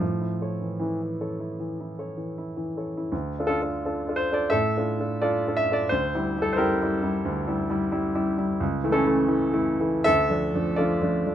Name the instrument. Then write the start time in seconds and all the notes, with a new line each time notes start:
grand piano
0.00 A2 F3
0.21 E4
0.42 A4 C#5
0.61 E3
0.79 E3 E4
1.02 E3
1.21 A4 C#5
1.40 E4
1.60 E3
1.81 E4
1.99 A4 C#5
2.17 E3
2.38 E4
2.57 E3
2.77 A4 C#5
2.97 E4
3.12 D2
3.39 D4 F4 A4
3.47 D4 F4 A4
3.62 D4 F4 A4
3.85 D4 F4 A4
4.08 D4 F4 A4
4.16 C5
4.32 D4 F4 A4 D5
4.50 A2 A4 E5
4.77 D4 F4 A4
5.00 D4 F4 A4
5.22 D4 F4 A4 D5
5.48 D4 F4 A4
5.57 E5
5.71 D4 F4 A4 D5
5.89 D2 C5
6.15 G3 E4
6.38 G3 E4 A4
6.53 C5
6.57 G3 E4 G4 A#4
6.82 G3 E4
7.03 G3 E4
7.25 D2
7.48 G3 E4
7.70 G3 E4
7.92 G3 E4
8.15 G3 E4
8.38 G3 E4
8.60 C#2
8.84 E3 A3 E4
8.92 C#4 E4 A4
9.06 E3 A3 E4
9.28 E3 A3 E4
9.53 E3 A3 E4
9.80 E3 A3 E4
10.04 D2 A4 E5
10.30 F3 A3 D4
10.54 F3 A3 D4
10.76 F3 A3 D4 F4 A4 D5
11.02 F3 A3 D4
11.26 F3 A3 D4